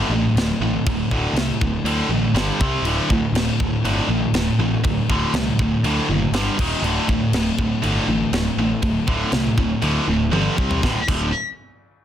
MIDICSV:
0, 0, Header, 1, 4, 480
1, 0, Start_track
1, 0, Tempo, 498339
1, 830, Time_signature, 4, 2, 24, 8
1, 11606, End_track
2, 0, Start_track
2, 0, Title_t, "Distorted electric guitar"
2, 0, Program_c, 0, 30
2, 0, Note_on_c, 0, 38, 102
2, 0, Note_on_c, 0, 45, 93
2, 0, Note_on_c, 0, 50, 97
2, 101, Note_off_c, 0, 38, 0
2, 102, Note_off_c, 0, 45, 0
2, 103, Note_off_c, 0, 50, 0
2, 121, Note_on_c, 0, 38, 81
2, 125, Note_on_c, 0, 45, 83
2, 332, Note_off_c, 0, 38, 0
2, 334, Note_off_c, 0, 45, 0
2, 365, Note_on_c, 0, 38, 77
2, 368, Note_on_c, 0, 45, 102
2, 574, Note_off_c, 0, 38, 0
2, 575, Note_off_c, 0, 45, 0
2, 591, Note_on_c, 0, 38, 72
2, 599, Note_on_c, 0, 45, 75
2, 806, Note_off_c, 0, 38, 0
2, 810, Note_off_c, 0, 45, 0
2, 835, Note_on_c, 0, 38, 66
2, 839, Note_on_c, 0, 45, 77
2, 1048, Note_off_c, 0, 38, 0
2, 1050, Note_off_c, 0, 45, 0
2, 1073, Note_on_c, 0, 45, 100
2, 1075, Note_on_c, 0, 38, 87
2, 1080, Note_on_c, 0, 50, 94
2, 1296, Note_off_c, 0, 45, 0
2, 1297, Note_off_c, 0, 38, 0
2, 1300, Note_off_c, 0, 50, 0
2, 1320, Note_on_c, 0, 38, 87
2, 1320, Note_on_c, 0, 45, 95
2, 1530, Note_off_c, 0, 38, 0
2, 1530, Note_off_c, 0, 45, 0
2, 1553, Note_on_c, 0, 38, 79
2, 1555, Note_on_c, 0, 45, 75
2, 1766, Note_off_c, 0, 38, 0
2, 1767, Note_off_c, 0, 45, 0
2, 1788, Note_on_c, 0, 38, 85
2, 1790, Note_on_c, 0, 45, 104
2, 1798, Note_on_c, 0, 50, 94
2, 2012, Note_off_c, 0, 38, 0
2, 2013, Note_off_c, 0, 45, 0
2, 2018, Note_off_c, 0, 50, 0
2, 2025, Note_on_c, 0, 38, 77
2, 2035, Note_on_c, 0, 45, 71
2, 2241, Note_off_c, 0, 38, 0
2, 2246, Note_off_c, 0, 45, 0
2, 2258, Note_on_c, 0, 43, 102
2, 2266, Note_on_c, 0, 50, 104
2, 2269, Note_on_c, 0, 55, 110
2, 2487, Note_off_c, 0, 43, 0
2, 2491, Note_off_c, 0, 50, 0
2, 2492, Note_off_c, 0, 55, 0
2, 2508, Note_on_c, 0, 48, 91
2, 2511, Note_on_c, 0, 55, 92
2, 2513, Note_on_c, 0, 60, 104
2, 2731, Note_off_c, 0, 48, 0
2, 2733, Note_off_c, 0, 55, 0
2, 2734, Note_off_c, 0, 60, 0
2, 2751, Note_on_c, 0, 38, 84
2, 2755, Note_on_c, 0, 50, 89
2, 2757, Note_on_c, 0, 45, 81
2, 2973, Note_off_c, 0, 38, 0
2, 2974, Note_off_c, 0, 50, 0
2, 2975, Note_off_c, 0, 45, 0
2, 2987, Note_on_c, 0, 38, 74
2, 2994, Note_on_c, 0, 45, 77
2, 3201, Note_off_c, 0, 38, 0
2, 3204, Note_off_c, 0, 45, 0
2, 3230, Note_on_c, 0, 38, 82
2, 3231, Note_on_c, 0, 45, 84
2, 3442, Note_off_c, 0, 38, 0
2, 3442, Note_off_c, 0, 45, 0
2, 3465, Note_on_c, 0, 38, 76
2, 3469, Note_on_c, 0, 45, 84
2, 3679, Note_off_c, 0, 38, 0
2, 3681, Note_off_c, 0, 45, 0
2, 3703, Note_on_c, 0, 38, 87
2, 3706, Note_on_c, 0, 50, 92
2, 3707, Note_on_c, 0, 45, 101
2, 3927, Note_off_c, 0, 38, 0
2, 3929, Note_off_c, 0, 45, 0
2, 3929, Note_off_c, 0, 50, 0
2, 3941, Note_on_c, 0, 38, 73
2, 3945, Note_on_c, 0, 45, 80
2, 4156, Note_off_c, 0, 38, 0
2, 4159, Note_off_c, 0, 45, 0
2, 4182, Note_on_c, 0, 38, 84
2, 4184, Note_on_c, 0, 45, 92
2, 4397, Note_off_c, 0, 38, 0
2, 4398, Note_off_c, 0, 45, 0
2, 4426, Note_on_c, 0, 38, 78
2, 4427, Note_on_c, 0, 45, 80
2, 4638, Note_off_c, 0, 38, 0
2, 4639, Note_off_c, 0, 45, 0
2, 4661, Note_on_c, 0, 38, 74
2, 4663, Note_on_c, 0, 45, 76
2, 4876, Note_off_c, 0, 38, 0
2, 4877, Note_off_c, 0, 45, 0
2, 4908, Note_on_c, 0, 38, 91
2, 4913, Note_on_c, 0, 45, 100
2, 4916, Note_on_c, 0, 50, 103
2, 5129, Note_off_c, 0, 38, 0
2, 5131, Note_off_c, 0, 45, 0
2, 5133, Note_off_c, 0, 50, 0
2, 5159, Note_on_c, 0, 38, 82
2, 5168, Note_on_c, 0, 45, 90
2, 5364, Note_off_c, 0, 38, 0
2, 5369, Note_off_c, 0, 45, 0
2, 5390, Note_on_c, 0, 38, 83
2, 5400, Note_on_c, 0, 45, 91
2, 5600, Note_off_c, 0, 38, 0
2, 5605, Note_off_c, 0, 45, 0
2, 5630, Note_on_c, 0, 38, 96
2, 5637, Note_on_c, 0, 45, 106
2, 5644, Note_on_c, 0, 50, 102
2, 5849, Note_off_c, 0, 38, 0
2, 5853, Note_off_c, 0, 45, 0
2, 5856, Note_off_c, 0, 50, 0
2, 5870, Note_on_c, 0, 45, 81
2, 5872, Note_on_c, 0, 38, 76
2, 6079, Note_off_c, 0, 45, 0
2, 6080, Note_off_c, 0, 38, 0
2, 6106, Note_on_c, 0, 43, 93
2, 6110, Note_on_c, 0, 50, 102
2, 6117, Note_on_c, 0, 55, 111
2, 6327, Note_off_c, 0, 43, 0
2, 6329, Note_off_c, 0, 50, 0
2, 6333, Note_off_c, 0, 55, 0
2, 6354, Note_on_c, 0, 39, 94
2, 6355, Note_on_c, 0, 46, 97
2, 6363, Note_on_c, 0, 51, 101
2, 6571, Note_off_c, 0, 39, 0
2, 6572, Note_off_c, 0, 46, 0
2, 6575, Note_off_c, 0, 51, 0
2, 6591, Note_on_c, 0, 38, 95
2, 6597, Note_on_c, 0, 50, 100
2, 6599, Note_on_c, 0, 45, 92
2, 6810, Note_off_c, 0, 38, 0
2, 6813, Note_off_c, 0, 50, 0
2, 6814, Note_off_c, 0, 45, 0
2, 6832, Note_on_c, 0, 38, 75
2, 6835, Note_on_c, 0, 45, 88
2, 7041, Note_off_c, 0, 38, 0
2, 7042, Note_off_c, 0, 45, 0
2, 7072, Note_on_c, 0, 38, 89
2, 7080, Note_on_c, 0, 45, 92
2, 7281, Note_off_c, 0, 38, 0
2, 7285, Note_off_c, 0, 45, 0
2, 7307, Note_on_c, 0, 38, 84
2, 7312, Note_on_c, 0, 45, 86
2, 7518, Note_off_c, 0, 38, 0
2, 7521, Note_off_c, 0, 45, 0
2, 7537, Note_on_c, 0, 38, 96
2, 7537, Note_on_c, 0, 50, 100
2, 7541, Note_on_c, 0, 45, 98
2, 7763, Note_off_c, 0, 38, 0
2, 7763, Note_off_c, 0, 50, 0
2, 7766, Note_off_c, 0, 45, 0
2, 7777, Note_on_c, 0, 38, 85
2, 7780, Note_on_c, 0, 45, 79
2, 7994, Note_off_c, 0, 38, 0
2, 7995, Note_off_c, 0, 45, 0
2, 8026, Note_on_c, 0, 38, 84
2, 8033, Note_on_c, 0, 45, 93
2, 8239, Note_off_c, 0, 38, 0
2, 8242, Note_off_c, 0, 45, 0
2, 8271, Note_on_c, 0, 38, 67
2, 8274, Note_on_c, 0, 45, 90
2, 8482, Note_off_c, 0, 38, 0
2, 8483, Note_off_c, 0, 45, 0
2, 8501, Note_on_c, 0, 38, 75
2, 8510, Note_on_c, 0, 45, 78
2, 8717, Note_off_c, 0, 38, 0
2, 8721, Note_off_c, 0, 45, 0
2, 8740, Note_on_c, 0, 38, 95
2, 8748, Note_on_c, 0, 45, 100
2, 8749, Note_on_c, 0, 50, 99
2, 8960, Note_off_c, 0, 38, 0
2, 8971, Note_off_c, 0, 45, 0
2, 8971, Note_off_c, 0, 50, 0
2, 8972, Note_on_c, 0, 38, 88
2, 8981, Note_on_c, 0, 45, 99
2, 9193, Note_off_c, 0, 38, 0
2, 9198, Note_off_c, 0, 45, 0
2, 9221, Note_on_c, 0, 38, 85
2, 9228, Note_on_c, 0, 45, 85
2, 9439, Note_off_c, 0, 38, 0
2, 9442, Note_off_c, 0, 45, 0
2, 9456, Note_on_c, 0, 38, 97
2, 9462, Note_on_c, 0, 45, 103
2, 9464, Note_on_c, 0, 50, 97
2, 9682, Note_off_c, 0, 38, 0
2, 9684, Note_off_c, 0, 45, 0
2, 9690, Note_off_c, 0, 50, 0
2, 9694, Note_on_c, 0, 38, 62
2, 9696, Note_on_c, 0, 45, 88
2, 9916, Note_off_c, 0, 38, 0
2, 9917, Note_off_c, 0, 45, 0
2, 9936, Note_on_c, 0, 43, 102
2, 9947, Note_on_c, 0, 50, 105
2, 9949, Note_on_c, 0, 55, 103
2, 10167, Note_off_c, 0, 43, 0
2, 10173, Note_off_c, 0, 50, 0
2, 10174, Note_off_c, 0, 55, 0
2, 10183, Note_on_c, 0, 48, 86
2, 10186, Note_on_c, 0, 55, 83
2, 10193, Note_on_c, 0, 60, 90
2, 10412, Note_off_c, 0, 48, 0
2, 10413, Note_off_c, 0, 55, 0
2, 10416, Note_off_c, 0, 60, 0
2, 10423, Note_on_c, 0, 38, 81
2, 10430, Note_on_c, 0, 45, 101
2, 10435, Note_on_c, 0, 50, 89
2, 10570, Note_off_c, 0, 38, 0
2, 10574, Note_off_c, 0, 45, 0
2, 10576, Note_off_c, 0, 50, 0
2, 10673, Note_on_c, 0, 38, 91
2, 10676, Note_on_c, 0, 45, 105
2, 10682, Note_on_c, 0, 50, 105
2, 10864, Note_off_c, 0, 38, 0
2, 10866, Note_off_c, 0, 45, 0
2, 10868, Note_off_c, 0, 50, 0
2, 11606, End_track
3, 0, Start_track
3, 0, Title_t, "Picked electric bass"
3, 0, Program_c, 1, 34
3, 90, Note_on_c, 1, 33, 96
3, 248, Note_off_c, 1, 33, 0
3, 334, Note_on_c, 1, 26, 90
3, 490, Note_off_c, 1, 26, 0
3, 579, Note_on_c, 1, 33, 92
3, 733, Note_off_c, 1, 33, 0
3, 828, Note_on_c, 1, 26, 103
3, 979, Note_off_c, 1, 26, 0
3, 1063, Note_on_c, 1, 26, 89
3, 1215, Note_off_c, 1, 26, 0
3, 1281, Note_on_c, 1, 36, 84
3, 1440, Note_off_c, 1, 36, 0
3, 1552, Note_on_c, 1, 26, 95
3, 1701, Note_off_c, 1, 26, 0
3, 1771, Note_on_c, 1, 38, 95
3, 1927, Note_off_c, 1, 38, 0
3, 2011, Note_on_c, 1, 33, 86
3, 2166, Note_off_c, 1, 33, 0
3, 2250, Note_on_c, 1, 31, 96
3, 2405, Note_off_c, 1, 31, 0
3, 2500, Note_on_c, 1, 36, 94
3, 2652, Note_off_c, 1, 36, 0
3, 2718, Note_on_c, 1, 26, 93
3, 2876, Note_off_c, 1, 26, 0
3, 2978, Note_on_c, 1, 38, 80
3, 3130, Note_off_c, 1, 38, 0
3, 3199, Note_on_c, 1, 26, 94
3, 3357, Note_off_c, 1, 26, 0
3, 3468, Note_on_c, 1, 26, 88
3, 3617, Note_off_c, 1, 26, 0
3, 3689, Note_on_c, 1, 31, 85
3, 3843, Note_off_c, 1, 31, 0
3, 3933, Note_on_c, 1, 33, 89
3, 4086, Note_off_c, 1, 33, 0
3, 4173, Note_on_c, 1, 26, 101
3, 4326, Note_off_c, 1, 26, 0
3, 4417, Note_on_c, 1, 33, 94
3, 4568, Note_off_c, 1, 33, 0
3, 4662, Note_on_c, 1, 26, 100
3, 4812, Note_off_c, 1, 26, 0
3, 4898, Note_on_c, 1, 26, 88
3, 5049, Note_off_c, 1, 26, 0
3, 5136, Note_on_c, 1, 36, 96
3, 5288, Note_off_c, 1, 36, 0
3, 5376, Note_on_c, 1, 26, 95
3, 5528, Note_off_c, 1, 26, 0
3, 5615, Note_on_c, 1, 38, 88
3, 5766, Note_off_c, 1, 38, 0
3, 5863, Note_on_c, 1, 30, 87
3, 6012, Note_off_c, 1, 30, 0
3, 6089, Note_on_c, 1, 31, 95
3, 6242, Note_off_c, 1, 31, 0
3, 6338, Note_on_c, 1, 27, 96
3, 6488, Note_off_c, 1, 27, 0
3, 6569, Note_on_c, 1, 26, 100
3, 6722, Note_off_c, 1, 26, 0
3, 6818, Note_on_c, 1, 38, 88
3, 6968, Note_off_c, 1, 38, 0
3, 7062, Note_on_c, 1, 26, 89
3, 7211, Note_off_c, 1, 26, 0
3, 7298, Note_on_c, 1, 26, 87
3, 7449, Note_off_c, 1, 26, 0
3, 7543, Note_on_c, 1, 31, 89
3, 7692, Note_off_c, 1, 31, 0
3, 7781, Note_on_c, 1, 33, 95
3, 7931, Note_off_c, 1, 33, 0
3, 8013, Note_on_c, 1, 26, 94
3, 8166, Note_off_c, 1, 26, 0
3, 8258, Note_on_c, 1, 33, 90
3, 8410, Note_off_c, 1, 33, 0
3, 8495, Note_on_c, 1, 26, 99
3, 8648, Note_off_c, 1, 26, 0
3, 8741, Note_on_c, 1, 26, 83
3, 8892, Note_off_c, 1, 26, 0
3, 8976, Note_on_c, 1, 36, 89
3, 9129, Note_off_c, 1, 36, 0
3, 9224, Note_on_c, 1, 26, 87
3, 9375, Note_off_c, 1, 26, 0
3, 9464, Note_on_c, 1, 38, 98
3, 9615, Note_off_c, 1, 38, 0
3, 9701, Note_on_c, 1, 26, 89
3, 9938, Note_off_c, 1, 26, 0
3, 9938, Note_on_c, 1, 31, 91
3, 10092, Note_off_c, 1, 31, 0
3, 10191, Note_on_c, 1, 36, 87
3, 10341, Note_off_c, 1, 36, 0
3, 10427, Note_on_c, 1, 26, 99
3, 10562, Note_off_c, 1, 26, 0
3, 10671, Note_on_c, 1, 26, 91
3, 10894, Note_off_c, 1, 26, 0
3, 11606, End_track
4, 0, Start_track
4, 0, Title_t, "Drums"
4, 357, Note_on_c, 9, 49, 57
4, 367, Note_on_c, 9, 38, 119
4, 453, Note_off_c, 9, 49, 0
4, 463, Note_off_c, 9, 38, 0
4, 833, Note_on_c, 9, 49, 62
4, 834, Note_on_c, 9, 36, 115
4, 929, Note_off_c, 9, 49, 0
4, 930, Note_off_c, 9, 36, 0
4, 1073, Note_on_c, 9, 36, 82
4, 1169, Note_off_c, 9, 36, 0
4, 1314, Note_on_c, 9, 49, 64
4, 1324, Note_on_c, 9, 38, 121
4, 1410, Note_off_c, 9, 49, 0
4, 1420, Note_off_c, 9, 38, 0
4, 1555, Note_on_c, 9, 36, 78
4, 1651, Note_off_c, 9, 36, 0
4, 1791, Note_on_c, 9, 49, 65
4, 1888, Note_off_c, 9, 49, 0
4, 2271, Note_on_c, 9, 49, 61
4, 2282, Note_on_c, 9, 38, 110
4, 2367, Note_off_c, 9, 49, 0
4, 2378, Note_off_c, 9, 38, 0
4, 2511, Note_on_c, 9, 36, 104
4, 2607, Note_off_c, 9, 36, 0
4, 2745, Note_on_c, 9, 49, 67
4, 2841, Note_off_c, 9, 49, 0
4, 2987, Note_on_c, 9, 36, 77
4, 3084, Note_off_c, 9, 36, 0
4, 3228, Note_on_c, 9, 49, 73
4, 3238, Note_on_c, 9, 38, 119
4, 3324, Note_off_c, 9, 49, 0
4, 3335, Note_off_c, 9, 38, 0
4, 3468, Note_on_c, 9, 36, 89
4, 3564, Note_off_c, 9, 36, 0
4, 3708, Note_on_c, 9, 49, 62
4, 3804, Note_off_c, 9, 49, 0
4, 4179, Note_on_c, 9, 49, 67
4, 4189, Note_on_c, 9, 38, 108
4, 4275, Note_off_c, 9, 49, 0
4, 4286, Note_off_c, 9, 38, 0
4, 4662, Note_on_c, 9, 49, 58
4, 4668, Note_on_c, 9, 36, 110
4, 4758, Note_off_c, 9, 49, 0
4, 4765, Note_off_c, 9, 36, 0
4, 4908, Note_on_c, 9, 36, 92
4, 5005, Note_off_c, 9, 36, 0
4, 5141, Note_on_c, 9, 49, 61
4, 5152, Note_on_c, 9, 38, 124
4, 5238, Note_off_c, 9, 49, 0
4, 5248, Note_off_c, 9, 38, 0
4, 5387, Note_on_c, 9, 36, 84
4, 5483, Note_off_c, 9, 36, 0
4, 5627, Note_on_c, 9, 49, 62
4, 5723, Note_off_c, 9, 49, 0
4, 6102, Note_on_c, 9, 49, 64
4, 6112, Note_on_c, 9, 38, 103
4, 6198, Note_off_c, 9, 49, 0
4, 6209, Note_off_c, 9, 38, 0
4, 6347, Note_on_c, 9, 36, 100
4, 6350, Note_on_c, 9, 49, 98
4, 6444, Note_off_c, 9, 36, 0
4, 6446, Note_off_c, 9, 49, 0
4, 6588, Note_on_c, 9, 49, 64
4, 6684, Note_off_c, 9, 49, 0
4, 6828, Note_on_c, 9, 36, 83
4, 6925, Note_off_c, 9, 36, 0
4, 7062, Note_on_c, 9, 49, 75
4, 7073, Note_on_c, 9, 38, 119
4, 7159, Note_off_c, 9, 49, 0
4, 7169, Note_off_c, 9, 38, 0
4, 7306, Note_on_c, 9, 36, 85
4, 7402, Note_off_c, 9, 36, 0
4, 7546, Note_on_c, 9, 49, 68
4, 7642, Note_off_c, 9, 49, 0
4, 8023, Note_on_c, 9, 49, 65
4, 8033, Note_on_c, 9, 38, 111
4, 8119, Note_off_c, 9, 49, 0
4, 8130, Note_off_c, 9, 38, 0
4, 8499, Note_on_c, 9, 49, 61
4, 8503, Note_on_c, 9, 36, 117
4, 8595, Note_off_c, 9, 49, 0
4, 8599, Note_off_c, 9, 36, 0
4, 8743, Note_on_c, 9, 36, 84
4, 8840, Note_off_c, 9, 36, 0
4, 8976, Note_on_c, 9, 49, 64
4, 8986, Note_on_c, 9, 38, 126
4, 9072, Note_off_c, 9, 49, 0
4, 9083, Note_off_c, 9, 38, 0
4, 9224, Note_on_c, 9, 36, 88
4, 9320, Note_off_c, 9, 36, 0
4, 9460, Note_on_c, 9, 49, 55
4, 9556, Note_off_c, 9, 49, 0
4, 9951, Note_on_c, 9, 48, 58
4, 10047, Note_off_c, 9, 48, 0
4, 10192, Note_on_c, 9, 36, 95
4, 10288, Note_off_c, 9, 36, 0
4, 10314, Note_on_c, 9, 43, 95
4, 10410, Note_off_c, 9, 43, 0
4, 10434, Note_on_c, 9, 36, 105
4, 10446, Note_on_c, 9, 38, 79
4, 10530, Note_off_c, 9, 36, 0
4, 10542, Note_off_c, 9, 38, 0
4, 10675, Note_on_c, 9, 57, 94
4, 10676, Note_on_c, 9, 36, 100
4, 10772, Note_off_c, 9, 36, 0
4, 10772, Note_off_c, 9, 57, 0
4, 11606, End_track
0, 0, End_of_file